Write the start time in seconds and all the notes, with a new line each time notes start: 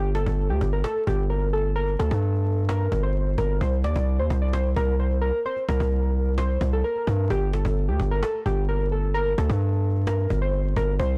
Already playing: G1
0.03 cajon slap
0.15 A4, cajon slap
0.26 G1, cajon bass
0.38 cajon slap
0.49 D2 G4, cajon slap
0.61 G1, cajon bass
0.73 A#4, cajon slap
0.78 cajon slap
0.84 A4, cajon slap
0.96 cajon slap
1.07 G1 G4, cajon bass
1.19 cajon slap
1.30 A#4, cajon slap
1.42 cajon slap
1.53 A4, cajon slap
1.76 A#4, cajon slap
1.88 cajon slap
1.99 D2 A4, cajon bass, cajon slap
2.11 G2, cajon bass
2.22 cajon slap
2.34 cajon slap
2.46 cajon slap
2.52 cajon slap
2.57 cajon slap
2.63 cajon slap
2.69 A#4, cajon slap
2.81 cajon slap
2.92 G1, cajon bass
3.03 C5
3.15 cajon slap
3.27 cajon slap
3.38 G1 A#4, cajon bass
3.61 C2 C5, cajon bass
3.72 cajon slap
3.84 D#2 D5, cajon slap
3.96 C2, cajon bass
4.07 cajon slap
4.19 D#2 C5, cajon slap
4.30 C2, cajon bass
4.42 D5, cajon slap
4.48 cajon slap
4.53 C5, cajon slap
4.65 cajon slap
4.76 C2 A#4, cajon bass
4.88 cajon slap
4.99 C5, cajon slap
5.11 cajon slap
5.21 A#4, cajon slap
5.45 C5, cajon slap
5.56 cajon slap
5.69 C2 A#4, cajon bass, cajon slap
5.80 C2, cajon bass
5.91 cajon slap
6.03 cajon slap
6.38 C5, cajon slap
6.50 cajon slap
6.61 C2, cajon bass, cajon slap
6.72 A4, cajon slap
6.84 A#4, cajon slap
6.96 cajon slap
7.07 G2, cajon bass
7.13 cajon slap
7.19 cajon slap
7.25 cajon slap
7.30 G1 G4, cajon bass
7.41 cajon slap
7.53 A4, cajon slap
7.65 G1, cajon bass
7.76 cajon slap
7.88 D2 G4, cajon slap
8.00 G1, cajon bass
8.11 A#4, cajon slap
8.17 cajon slap
8.23 A4, cajon slap
8.35 cajon slap
8.46 G1 G4, cajon bass
8.57 cajon slap
8.69 A#4, cajon slap
8.81 cajon slap
8.91 A4, cajon slap
9.14 A#4, cajon slap
9.26 cajon slap
9.38 D2 A4, cajon bass, cajon slap
9.50 G2, cajon bass
9.61 cajon slap
9.73 cajon slap
9.84 cajon slap
9.90 cajon slap
9.96 cajon slap
10.01 cajon slap
10.07 A#4, cajon slap
10.19 cajon slap
10.30 G1, cajon bass
10.42 C5, cajon slap
10.53 cajon slap
10.65 cajon slap
10.76 G1 A#4, cajon bass
10.99 C2 C5, cajon bass
11.11 cajon slap